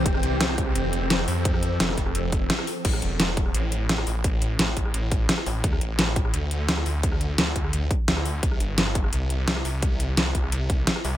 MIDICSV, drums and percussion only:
0, 0, Header, 1, 2, 480
1, 0, Start_track
1, 0, Key_signature, 0, "minor"
1, 0, Tempo, 348837
1, 78, Time_signature, 4, 2, 24, 8
1, 15370, End_track
2, 0, Start_track
2, 0, Title_t, "Drums"
2, 78, Note_on_c, 9, 36, 117
2, 78, Note_on_c, 9, 42, 97
2, 198, Note_on_c, 9, 37, 34
2, 216, Note_off_c, 9, 36, 0
2, 216, Note_off_c, 9, 42, 0
2, 317, Note_on_c, 9, 42, 70
2, 335, Note_off_c, 9, 37, 0
2, 455, Note_off_c, 9, 42, 0
2, 558, Note_on_c, 9, 38, 119
2, 558, Note_on_c, 9, 42, 98
2, 678, Note_on_c, 9, 37, 35
2, 696, Note_off_c, 9, 38, 0
2, 696, Note_off_c, 9, 42, 0
2, 798, Note_on_c, 9, 36, 102
2, 799, Note_on_c, 9, 42, 67
2, 816, Note_off_c, 9, 37, 0
2, 918, Note_on_c, 9, 37, 32
2, 936, Note_off_c, 9, 36, 0
2, 936, Note_off_c, 9, 42, 0
2, 1039, Note_on_c, 9, 42, 97
2, 1056, Note_off_c, 9, 37, 0
2, 1176, Note_off_c, 9, 42, 0
2, 1278, Note_on_c, 9, 42, 69
2, 1416, Note_off_c, 9, 42, 0
2, 1518, Note_on_c, 9, 38, 116
2, 1518, Note_on_c, 9, 42, 98
2, 1638, Note_on_c, 9, 37, 56
2, 1656, Note_off_c, 9, 38, 0
2, 1656, Note_off_c, 9, 42, 0
2, 1758, Note_on_c, 9, 46, 83
2, 1776, Note_off_c, 9, 37, 0
2, 1895, Note_off_c, 9, 46, 0
2, 1998, Note_on_c, 9, 42, 101
2, 1999, Note_on_c, 9, 36, 120
2, 2118, Note_on_c, 9, 37, 36
2, 2136, Note_off_c, 9, 36, 0
2, 2136, Note_off_c, 9, 42, 0
2, 2238, Note_on_c, 9, 42, 72
2, 2256, Note_off_c, 9, 37, 0
2, 2376, Note_off_c, 9, 42, 0
2, 2478, Note_on_c, 9, 38, 117
2, 2478, Note_on_c, 9, 42, 100
2, 2598, Note_off_c, 9, 38, 0
2, 2598, Note_on_c, 9, 37, 38
2, 2598, Note_on_c, 9, 38, 36
2, 2616, Note_off_c, 9, 42, 0
2, 2718, Note_on_c, 9, 36, 60
2, 2718, Note_on_c, 9, 42, 67
2, 2735, Note_off_c, 9, 37, 0
2, 2735, Note_off_c, 9, 38, 0
2, 2838, Note_on_c, 9, 37, 33
2, 2856, Note_off_c, 9, 36, 0
2, 2856, Note_off_c, 9, 42, 0
2, 2958, Note_on_c, 9, 42, 100
2, 2976, Note_off_c, 9, 37, 0
2, 3095, Note_off_c, 9, 42, 0
2, 3198, Note_on_c, 9, 42, 71
2, 3199, Note_on_c, 9, 36, 102
2, 3335, Note_off_c, 9, 42, 0
2, 3336, Note_off_c, 9, 36, 0
2, 3438, Note_on_c, 9, 38, 117
2, 3438, Note_on_c, 9, 42, 103
2, 3558, Note_on_c, 9, 37, 58
2, 3575, Note_off_c, 9, 38, 0
2, 3575, Note_off_c, 9, 42, 0
2, 3679, Note_on_c, 9, 46, 79
2, 3696, Note_off_c, 9, 37, 0
2, 3816, Note_off_c, 9, 46, 0
2, 3918, Note_on_c, 9, 36, 122
2, 3918, Note_on_c, 9, 42, 100
2, 3918, Note_on_c, 9, 49, 109
2, 4038, Note_on_c, 9, 37, 37
2, 4056, Note_off_c, 9, 36, 0
2, 4056, Note_off_c, 9, 42, 0
2, 4056, Note_off_c, 9, 49, 0
2, 4158, Note_on_c, 9, 42, 73
2, 4176, Note_off_c, 9, 37, 0
2, 4296, Note_off_c, 9, 42, 0
2, 4398, Note_on_c, 9, 38, 122
2, 4398, Note_on_c, 9, 42, 99
2, 4518, Note_on_c, 9, 37, 38
2, 4535, Note_off_c, 9, 38, 0
2, 4535, Note_off_c, 9, 42, 0
2, 4638, Note_on_c, 9, 36, 111
2, 4638, Note_on_c, 9, 42, 69
2, 4656, Note_off_c, 9, 37, 0
2, 4758, Note_on_c, 9, 37, 34
2, 4775, Note_off_c, 9, 42, 0
2, 4776, Note_off_c, 9, 36, 0
2, 4878, Note_on_c, 9, 42, 99
2, 4895, Note_off_c, 9, 37, 0
2, 5015, Note_off_c, 9, 42, 0
2, 5118, Note_on_c, 9, 42, 72
2, 5255, Note_off_c, 9, 42, 0
2, 5358, Note_on_c, 9, 38, 125
2, 5358, Note_on_c, 9, 42, 97
2, 5478, Note_on_c, 9, 37, 60
2, 5495, Note_off_c, 9, 38, 0
2, 5495, Note_off_c, 9, 42, 0
2, 5598, Note_on_c, 9, 46, 80
2, 5615, Note_off_c, 9, 37, 0
2, 5735, Note_off_c, 9, 46, 0
2, 5838, Note_on_c, 9, 36, 127
2, 5838, Note_on_c, 9, 42, 95
2, 5976, Note_off_c, 9, 36, 0
2, 5976, Note_off_c, 9, 42, 0
2, 6078, Note_on_c, 9, 42, 71
2, 6216, Note_off_c, 9, 42, 0
2, 6319, Note_on_c, 9, 38, 127
2, 6319, Note_on_c, 9, 42, 100
2, 6439, Note_on_c, 9, 37, 38
2, 6456, Note_off_c, 9, 38, 0
2, 6456, Note_off_c, 9, 42, 0
2, 6559, Note_on_c, 9, 36, 66
2, 6559, Note_on_c, 9, 42, 68
2, 6576, Note_off_c, 9, 37, 0
2, 6679, Note_on_c, 9, 37, 35
2, 6696, Note_off_c, 9, 36, 0
2, 6696, Note_off_c, 9, 42, 0
2, 6799, Note_on_c, 9, 42, 97
2, 6817, Note_off_c, 9, 37, 0
2, 6936, Note_off_c, 9, 42, 0
2, 7039, Note_on_c, 9, 36, 113
2, 7039, Note_on_c, 9, 42, 70
2, 7176, Note_off_c, 9, 36, 0
2, 7176, Note_off_c, 9, 42, 0
2, 7279, Note_on_c, 9, 38, 127
2, 7279, Note_on_c, 9, 42, 97
2, 7399, Note_on_c, 9, 37, 58
2, 7416, Note_off_c, 9, 38, 0
2, 7416, Note_off_c, 9, 42, 0
2, 7519, Note_on_c, 9, 46, 77
2, 7536, Note_off_c, 9, 37, 0
2, 7656, Note_off_c, 9, 46, 0
2, 7759, Note_on_c, 9, 36, 127
2, 7759, Note_on_c, 9, 42, 93
2, 7879, Note_on_c, 9, 37, 37
2, 7896, Note_off_c, 9, 36, 0
2, 7896, Note_off_c, 9, 42, 0
2, 7999, Note_on_c, 9, 42, 67
2, 8016, Note_off_c, 9, 37, 0
2, 8136, Note_off_c, 9, 42, 0
2, 8238, Note_on_c, 9, 38, 127
2, 8238, Note_on_c, 9, 42, 94
2, 8359, Note_on_c, 9, 37, 37
2, 8376, Note_off_c, 9, 38, 0
2, 8376, Note_off_c, 9, 42, 0
2, 8479, Note_on_c, 9, 36, 116
2, 8479, Note_on_c, 9, 42, 64
2, 8496, Note_off_c, 9, 37, 0
2, 8599, Note_on_c, 9, 37, 35
2, 8617, Note_off_c, 9, 36, 0
2, 8617, Note_off_c, 9, 42, 0
2, 8719, Note_on_c, 9, 42, 93
2, 8737, Note_off_c, 9, 37, 0
2, 8857, Note_off_c, 9, 42, 0
2, 8959, Note_on_c, 9, 42, 66
2, 9097, Note_off_c, 9, 42, 0
2, 9199, Note_on_c, 9, 38, 127
2, 9199, Note_on_c, 9, 42, 94
2, 9319, Note_on_c, 9, 37, 58
2, 9337, Note_off_c, 9, 38, 0
2, 9337, Note_off_c, 9, 42, 0
2, 9439, Note_on_c, 9, 46, 80
2, 9456, Note_off_c, 9, 37, 0
2, 9576, Note_off_c, 9, 46, 0
2, 9679, Note_on_c, 9, 36, 127
2, 9679, Note_on_c, 9, 42, 89
2, 9799, Note_on_c, 9, 37, 36
2, 9816, Note_off_c, 9, 36, 0
2, 9816, Note_off_c, 9, 42, 0
2, 9919, Note_on_c, 9, 42, 65
2, 9937, Note_off_c, 9, 37, 0
2, 10057, Note_off_c, 9, 42, 0
2, 10158, Note_on_c, 9, 38, 127
2, 10158, Note_on_c, 9, 42, 92
2, 10279, Note_on_c, 9, 37, 36
2, 10296, Note_off_c, 9, 38, 0
2, 10296, Note_off_c, 9, 42, 0
2, 10399, Note_on_c, 9, 36, 66
2, 10399, Note_on_c, 9, 42, 61
2, 10416, Note_off_c, 9, 37, 0
2, 10519, Note_on_c, 9, 37, 34
2, 10536, Note_off_c, 9, 36, 0
2, 10536, Note_off_c, 9, 42, 0
2, 10639, Note_on_c, 9, 42, 87
2, 10656, Note_off_c, 9, 37, 0
2, 10776, Note_off_c, 9, 42, 0
2, 10879, Note_on_c, 9, 36, 112
2, 10879, Note_on_c, 9, 42, 65
2, 11016, Note_off_c, 9, 36, 0
2, 11016, Note_off_c, 9, 42, 0
2, 11119, Note_on_c, 9, 38, 127
2, 11119, Note_on_c, 9, 42, 94
2, 11238, Note_on_c, 9, 37, 56
2, 11256, Note_off_c, 9, 38, 0
2, 11256, Note_off_c, 9, 42, 0
2, 11359, Note_on_c, 9, 46, 80
2, 11376, Note_off_c, 9, 37, 0
2, 11496, Note_off_c, 9, 46, 0
2, 11598, Note_on_c, 9, 36, 126
2, 11598, Note_on_c, 9, 42, 92
2, 11718, Note_on_c, 9, 37, 33
2, 11736, Note_off_c, 9, 36, 0
2, 11736, Note_off_c, 9, 42, 0
2, 11839, Note_on_c, 9, 42, 64
2, 11856, Note_off_c, 9, 37, 0
2, 11976, Note_off_c, 9, 42, 0
2, 12079, Note_on_c, 9, 38, 124
2, 12079, Note_on_c, 9, 42, 93
2, 12199, Note_on_c, 9, 37, 35
2, 12216, Note_off_c, 9, 38, 0
2, 12216, Note_off_c, 9, 42, 0
2, 12318, Note_on_c, 9, 42, 63
2, 12319, Note_on_c, 9, 36, 108
2, 12336, Note_off_c, 9, 37, 0
2, 12438, Note_on_c, 9, 37, 32
2, 12456, Note_off_c, 9, 36, 0
2, 12456, Note_off_c, 9, 42, 0
2, 12558, Note_on_c, 9, 42, 91
2, 12576, Note_off_c, 9, 37, 0
2, 12696, Note_off_c, 9, 42, 0
2, 12799, Note_on_c, 9, 42, 64
2, 12936, Note_off_c, 9, 42, 0
2, 13039, Note_on_c, 9, 38, 126
2, 13039, Note_on_c, 9, 42, 91
2, 13159, Note_on_c, 9, 37, 53
2, 13176, Note_off_c, 9, 38, 0
2, 13176, Note_off_c, 9, 42, 0
2, 13279, Note_on_c, 9, 46, 84
2, 13296, Note_off_c, 9, 37, 0
2, 13417, Note_off_c, 9, 46, 0
2, 13519, Note_on_c, 9, 36, 122
2, 13519, Note_on_c, 9, 42, 93
2, 13657, Note_off_c, 9, 36, 0
2, 13657, Note_off_c, 9, 42, 0
2, 13759, Note_on_c, 9, 42, 69
2, 13897, Note_off_c, 9, 42, 0
2, 13999, Note_on_c, 9, 38, 119
2, 13999, Note_on_c, 9, 42, 94
2, 14119, Note_on_c, 9, 37, 36
2, 14137, Note_off_c, 9, 38, 0
2, 14137, Note_off_c, 9, 42, 0
2, 14239, Note_on_c, 9, 36, 60
2, 14240, Note_on_c, 9, 42, 67
2, 14257, Note_off_c, 9, 37, 0
2, 14359, Note_on_c, 9, 37, 31
2, 14377, Note_off_c, 9, 36, 0
2, 14377, Note_off_c, 9, 42, 0
2, 14479, Note_on_c, 9, 42, 94
2, 14497, Note_off_c, 9, 37, 0
2, 14617, Note_off_c, 9, 42, 0
2, 14719, Note_on_c, 9, 36, 102
2, 14719, Note_on_c, 9, 42, 68
2, 14856, Note_off_c, 9, 36, 0
2, 14857, Note_off_c, 9, 42, 0
2, 14959, Note_on_c, 9, 38, 120
2, 14959, Note_on_c, 9, 42, 93
2, 15079, Note_on_c, 9, 37, 55
2, 15097, Note_off_c, 9, 38, 0
2, 15097, Note_off_c, 9, 42, 0
2, 15199, Note_on_c, 9, 46, 85
2, 15217, Note_off_c, 9, 37, 0
2, 15337, Note_off_c, 9, 46, 0
2, 15370, End_track
0, 0, End_of_file